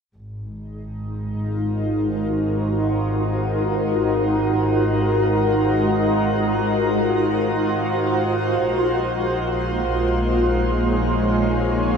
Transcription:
0.14 G#1 G#3
0.28 D#4
0.93 F4
1.22 A#4
1.45 C5
1.55 F#4
8.62 A#1 G#3 A#3 D#4
9.46 G#4
10.33 C#5

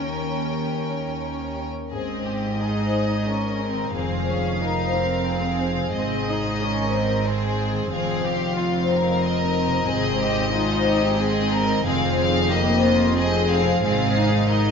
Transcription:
Already playing: D#2 D#3 A#3 C#4 A#4 C#5 G5 A#5
0.13 C#4
0.31 G4
0.49 A#4
0.66 C#5
0.84 G5
1.02 A#5
1.20 G5
1.38 C#5
1.57 A#4
1.74 C#4
1.91 G#1 G#2 C4 G#4 D#5
2.14 C4
2.26 G4
2.37 D#4
2.60 D#4 G#4
2.83 C5
3.06 D#5
3.28 G#3 C#4 A#4
3.50 D#4
3.60 C4
3.73 D#3
3.94 F1 F2 C4 G#4 F5
4.17 C4
4.28 C#4
4.40 D#4
4.61 D#4 F4 A#4
4.84 C5
4.94 C4
5.06 D#5
5.30 G#4
5.51 D#4
5.74 C3
5.95 G#1 G#2 C4 G#4 D#5
6.18 C4
6.29 D#4
6.40 D#4
6.62 C#4 A#4
6.85 C5
6.95 C4
7.07 D#5
7.28 G#4 C5
7.49 D#4
7.71 D#3
7.92 F1 F2 C4 G#4 F5
8.15 C4
8.26 G4
8.36 D#4
8.57 C4 F4
8.79 C5
8.92 A#4
9.01 D#5
9.25 D#5
9.44 D#4
9.66 C3
9.87 G#1 G#2 C4 G#4
10.10 C4
10.21 G4
10.31 D#4
10.53 G#3 D#4 F4
10.76 C5
10.87 G4
10.98 D#5
11.19 C4 G#4
11.42 D#4
11.54 A#4
11.63 D#3
11.85 F1 F2 C4 G#4 F5
12.07 C4
12.20 F5
12.29 D#4
12.51 A#3 F4 G4 D#5
12.73 C5
12.84 F4
12.95 D#5
13.16 C4 G#4 D#5
13.40 D#4
13.52 F5
13.62 C3
13.84 G#1 G#2 C4 G#4 F5
14.06 C4
14.16 D#4
14.28 D#4
14.51 G#4 A#4 D#5

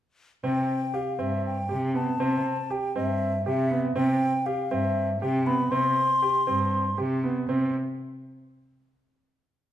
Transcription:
0.44 C3 C4 G5
0.94 G4 F5
1.19 G2 C4 E5
1.46 G5
1.69 C3 G4
1.94 B3 A5
2.20 C3 C4
2.70 G4 G5
2.96 G2 C4 E5
3.46 C3 G4 E5
3.71 B3
3.96 C3 C4 G5
4.46 G4 F5
4.71 G2 C4 E5
5.21 C3 G4 G5
5.46 B3 B5
5.71 C3 C4 C6
6.22 G4
6.47 G2 C4
6.98 C3 G4
7.24 B3
7.49 C3 C4

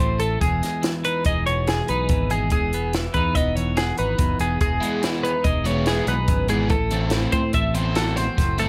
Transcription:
Already playing: E3 A3 C4 F#4 C5
0.00 A1 A2
0.20 A3 A4, closed hi-hat
0.41 E1 E2 G#4, kick, closed hi-hat
0.63 G#3, snare, closed hi-hat
0.82 E3, snare, closed hi-hat
1.04 D#4 B4, closed hi-hat
1.25 E1 G#3 D#5, kick, closed hi-hat
1.46 B2 C#5, closed hi-hat
1.67 G#4, snare, closed hi-hat
1.88 B1 D#4 B4, closed hi-hat
2.09 G#1 E2, kick, closed hi-hat
2.30 G#3 G#4, closed hi-hat
2.50 E1 E2 G#4, kick, closed hi-hat
2.73 B3, closed hi-hat
2.93 E3, snare, closed hi-hat
3.14 E2 D#4 B4, kick, closed hi-hat
3.35 E1 B3 D#5, kick, closed hi-hat
3.56 E2 C#5, closed hi-hat
3.77 F#4 G#4, snare, closed hi-hat
3.98 G#1 D#4 B4, closed hi-hat
4.18 F#1 E2, kick, closed hi-hat
4.40 E1 B3 G#4, closed hi-hat
4.61 E1 E2 G#4, kick, closed hi-hat
4.81 E3 G#3 B3 E4, closed hi-hat
5.03 E3 G#3 B3 E4, snare, closed hi-hat
5.24 D#4 B4, closed hi-hat
5.44 E1 G#3 D#5, kick, closed hi-hat
5.65 B2 E3 G#3 B3 E4 C#5, closed hi-hat
5.86 E3 G#3 B3 E4 G#4, snare, closed hi-hat
6.07 B1 D#4 B4, closed hi-hat
6.28 G#1 F#2, kick, closed hi-hat
6.48 G#2 E3 G#3 B3 E4 G#4, closed hi-hat
6.70 A1 A2 A4, kick, closed hi-hat
6.91 E3 A3 C4 E4, closed hi-hat
7.10 E3 A3 C4 E4, snare, closed hi-hat
7.32 A2 C4 C5, kick, closed hi-hat
7.53 A1 A3 E5, kick, closed hi-hat
7.74 E2 E3 A3 C4 E4 C5, closed hi-hat
7.95 E3 A3 C4 E4 F#4 A4, snare, closed hi-hat
8.16 C4 C5, snare, closed hi-hat
8.37 F#1 A2, kick, snare, closed hi-hat
8.58 E3 A3 C4 E4 A4, closed hi-hat

